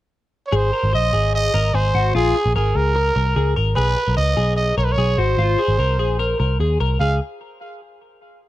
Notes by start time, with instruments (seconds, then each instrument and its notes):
0.47 trumpet C#5
0.52 picked electric bass G#1, clean electric guitar G#4, trumpet C5
0.73 clean electric guitar A#4
0.83 picked electric bass G#1
0.93 picked electric bass A#1, clean electric guitar C5, trumpet D#5
1.13 picked electric bass G#1, clean electric guitar G#4
1.35 trumpet D#5
1.54 picked electric bass G#1, clean electric guitar A#4
1.74 picked electric bass G#1, clean electric guitar G#4, trumpet C5
1.94 picked electric bass G#1, clean electric guitar F#4
2.15 picked electric bass A#1, clean electric guitar F4, trumpet G#4
2.35 clean electric guitar G#4
2.46 picked electric bass A#1
2.55 picked electric bass G#1, trumpet G#4, clean electric guitar A#4
2.75 picked electric bass C#2, clean electric guitar G#4, trumpet A#4
2.96 clean electric guitar A#4
3.16 picked electric bass C2, clean electric guitar A#4
3.36 picked electric bass C#2, clean electric guitar G#4
3.56 picked electric bass G#1, clean electric guitar A#4
3.76 picked electric bass B1, clean electric guitar G#4, trumpet B4
3.97 clean electric guitar A#4
4.08 picked electric bass B1
4.17 picked electric bass C#2, clean electric guitar B4, trumpet D#5
4.37 picked electric bass B1, clean electric guitar G#4
4.57 trumpet D#5
4.78 picked electric bass B1, clean electric guitar A#4, trumpet C#5
4.85 trumpet B4
4.92 trumpet C#5
4.98 picked electric bass B1, clean electric guitar G#4
5.18 picked electric bass G#1, clean electric guitar F#4, trumpet C5
5.38 picked electric bass G#1, clean electric guitar F4
5.59 clean electric guitar G#4
5.68 picked electric bass G#1
5.78 picked electric bass C2, clean electric guitar A#4
5.99 picked electric bass A#1, clean electric guitar G#4
6.19 clean electric guitar A#4
6.40 picked electric bass C2, clean electric guitar A#4
6.60 picked electric bass D#2, clean electric guitar G#4
6.80 picked electric bass C2, clean electric guitar A#4
7.00 picked electric bass C#2, clean electric guitar G#4, trumpet F5